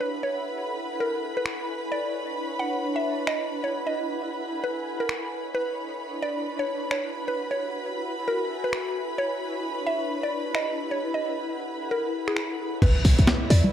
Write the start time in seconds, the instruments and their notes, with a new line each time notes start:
Already playing: ambient pad E4 E5 F#5, violin section B4 B5
0.00 ambient pad A4, synth pluck B4
0.23 synth pluck C#5
0.39 ambient pad G#5
1.00 synth pluck A#4
1.12 ambient pad C#5
1.37 synth pluck B4
1.46 finger snap
1.92 ambient pad D4, synth pluck D5
2.59 ambient pad E4, synth pluck F#5
2.96 synth pluck E5
3.01 ambient pad F#5
3.27 synth pluck D#5, finger snap
3.64 synth pluck C#5
3.87 synth pluck D#5
4.02 ambient pad G#5
4.64 synth pluck B4
4.83 ambient pad C#5
5.00 synth pluck A#4
5.09 finger snap
5.54 ambient pad D4, violin section B4 B5, synth pluck B4
6.22 ambient pad E4, synth pluck D5
6.59 synth pluck C#5, ambient pad F#5
6.91 synth pluck C#5, finger snap
7.13 ambient pad F#4
7.28 synth pluck B4
7.36 ambient pad E5
7.51 synth pluck C#5
7.66 ambient pad G#5
8.28 ambient pad E4, synth pluck A#4
8.64 synth pluck B4
8.70 ambient pad C#5, finger snap
9.18 ambient pad D4, synth pluck C#5
9.86 ambient pad E4, synth pluck E5
10.23 synth pluck D5
10.28 ambient pad F#5
10.55 synth pluck D#5, finger snap
10.91 synth pluck C#5
11.03 ambient pad A4
11.14 synth pluck D#5
11.91 synth pluck A#4, ambient pad C#5
12.28 synth pluck G#4, finger snap
12.33 ambient pad B4, finger snap
12.82 808-style bass B1, violin section E4 E5, synth pluck B4, kick, closed hi-hat, crash, impact
13.05 808-style bass B1, open hi-hat
13.15 808-style bass B1, ambient pad D5, closed hi-hat
13.27 snare
13.50 808-style bass E2, ambient pad E4, synth pluck D5, open hi-hat
13.64 high conga